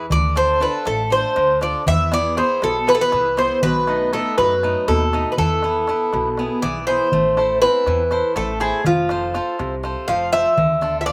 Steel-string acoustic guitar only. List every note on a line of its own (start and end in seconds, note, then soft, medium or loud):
0.11 0.60 D3 medium
0.35 0.59 D4 soft
0.35 0.60 F4 soft
0.35 0.60 A4 medium
0.60 1.01 D4 medium
0.60 1.01 F4 medium
0.60 1.02 A4 medium
0.85 1.35 A3 medium
1.10 1.51 D4 soft
1.10 1.52 F4 soft
1.10 1.52 A4 medium
1.36 1.85 D3 medium
1.61 1.82 D4 soft
1.61 1.82 F4 soft
1.61 1.82 A4 medium
1.87 2.36 E3 medium
2.12 2.36 B3 medium
2.12 2.36 E4 soft
2.12 2.36 G#4 medium
2.37 2.77 B3 medium
2.37 2.78 E4 soft
2.37 2.78 G#4 medium
2.62 3.11 B2 medium
2.87 3.28 B3 soft
2.87 3.28 E4 soft
2.87 3.28 G#4 medium
3.12 3.61 E3 medium
3.37 3.58 B3 medium
3.37 3.58 E4 soft
3.37 3.58 G#4 soft
3.63 4.12 B2 medium
3.88 4.12 A3 medium
3.88 4.13 B3 soft
3.88 4.13 D#4 soft
4.13 4.53 A3 medium
4.13 4.54 B3 medium
4.13 4.54 D#4 medium
4.38 4.87 F#3 medium
4.63 5.03 A3 soft
4.63 5.03 B3 soft
4.63 5.04 D#4 medium
4.88 5.36 B2 medium
5.13 5.33 A3 medium
5.13 5.33 B3 soft
5.13 5.34 D#4 medium
5.38 5.86 E3 medium
5.64 5.87 B3 medium
5.64 5.88 E4 soft
5.64 5.88 B4 soft
5.89 6.28 B3 medium
5.89 6.28 E4 medium
5.89 6.28 B4 medium
6.13 6.61 B2 medium
6.39 6.78 B3 soft
6.39 6.78 E4 soft
6.39 6.78 G#4 medium
6.63 7.11 E3 medium
6.88 7.07 B3 soft
6.88 7.07 E4 soft
6.88 7.08 G#4 medium
7.13 7.61 A3 medium
7.37 7.61 E4 soft
7.37 7.61 A4 soft
7.37 7.77 C5 soft
7.62 8.02 C4 medium
7.62 8.01 E4 medium
7.62 8.02 A4 soft
7.87 8.35 E3 medium
8.11 8.51 E4 soft
8.11 8.51 A4 soft
8.11 8.51 C5 medium
8.36 8.84 A3 medium
8.60 8.80 E4 medium
8.60 8.80 A4 medium
8.60 8.81 C5 medium
8.86 9.33 F3 medium
9.10 9.34 F4 soft
9.10 9.34 A4 soft
9.10 9.34 C5 medium
9.35 9.74 F4 medium
9.35 9.74 A4 medium
9.35 9.75 C5 medium
9.59 10.07 C3 medium
9.83 10.23 F4 medium
9.83 10.23 A4 soft
9.83 10.24 C5 medium
10.09 10.56 F3 medium
10.32 10.52 F4 medium
10.32 10.53 A4 soft
10.32 10.53 C5 medium
10.58 11.05 D3 medium
10.81 11.06 D4 medium
10.81 11.06 F4 soft
10.81 11.06 A4 medium
11.07 11.12 D4 medium
11.07 11.12 F4 soft
11.07 11.12 A4 medium